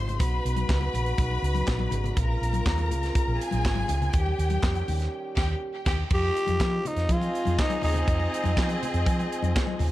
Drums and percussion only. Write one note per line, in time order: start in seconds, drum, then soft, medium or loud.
0.08 closed hi-hat soft
0.08 low conga medium
0.20 kick loud
0.20 closed hi-hat medium
0.20 muted conga soft
0.46 closed hi-hat medium
0.56 closed hi-hat soft
0.56 high conga medium
0.69 kick loud
0.69 snare loud
0.69 clap medium
0.69 muted conga soft
0.81 muted conga soft
0.94 closed hi-hat medium
0.94 low conga medium
1.06 closed hi-hat soft
1.18 kick loud
1.18 closed hi-hat medium
1.18 muted conga soft
1.31 muted conga soft
1.44 closed hi-hat medium
1.55 closed hi-hat soft
1.55 high conga medium
1.67 kick medium
1.67 snare loud
1.67 clap medium
1.67 muted conga soft
1.79 high conga medium
1.91 closed hi-hat medium
1.91 low conga medium
2.04 closed hi-hat soft
2.04 low conga medium
2.17 kick loud
2.17 closed hi-hat medium
2.43 closed hi-hat medium
2.53 closed hi-hat soft
2.53 high conga medium
2.66 kick loud
2.66 snare loud
2.66 clap medium
2.66 muted conga soft
2.78 closed hi-hat soft
2.78 muted conga soft
2.91 closed hi-hat medium
2.91 low conga medium
3.03 snare soft
3.03 closed hi-hat soft
3.15 kick loud
3.15 closed hi-hat medium
3.41 closed hi-hat medium
3.51 closed hi-hat soft
3.51 high conga medium
3.65 kick loud
3.65 snare loud
3.65 clap medium
3.75 muted conga soft
3.75 high conga medium
3.88 closed hi-hat medium
3.88 low conga medium
4.02 closed hi-hat soft
4.02 low conga medium
4.13 kick loud
4.13 closed hi-hat medium
4.26 muted conga soft
4.39 closed hi-hat medium
4.50 closed hi-hat soft
4.50 high conga medium
4.63 kick loud
4.63 snare medium
4.63 clap medium
4.75 closed hi-hat soft
4.88 open hi-hat medium
4.88 low conga medium
5.00 snare soft
5.00 closed hi-hat soft
5.37 kick loud
5.37 snare medium
5.37 crash medium
5.86 kick loud
5.86 snare loud
5.86 crash medium
6.10 kick loud
6.10 crash medium
6.10 muted conga soft
6.36 closed hi-hat medium
6.47 closed hi-hat soft
6.47 high conga medium
6.60 kick medium
6.60 snare loud
6.60 clap medium
6.60 muted conga soft
6.85 closed hi-hat medium
6.85 low conga medium
6.97 snare soft
6.97 closed hi-hat soft
7.09 kick loud
7.09 closed hi-hat medium
7.09 muted conga soft
7.21 closed hi-hat soft
7.21 muted conga soft
7.35 closed hi-hat medium
7.45 closed hi-hat soft
7.45 high conga medium
7.58 kick loud
7.58 snare loud
7.58 clap medium
7.58 muted conga soft
7.70 closed hi-hat soft
7.70 muted conga soft
7.70 high conga medium
7.82 open hi-hat medium
7.82 low conga medium
7.95 closed hi-hat soft
7.95 low conga medium
8.07 kick loud
8.07 closed hi-hat medium
8.07 muted conga soft
8.20 muted conga soft
8.34 closed hi-hat medium
8.44 closed hi-hat soft
8.44 high conga medium
8.57 kick loud
8.57 snare loud
8.57 clap medium
8.69 closed hi-hat soft
8.69 muted conga soft
8.83 closed hi-hat medium
8.83 low conga medium
8.94 closed hi-hat soft
9.06 kick loud
9.06 closed hi-hat medium
9.06 muted conga soft
9.19 closed hi-hat soft
9.19 muted conga soft
9.32 closed hi-hat medium
9.42 closed hi-hat soft
9.42 high conga medium
9.56 kick loud
9.56 snare loud
9.56 clap medium
9.67 high conga medium
9.79 open hi-hat medium
9.79 low conga medium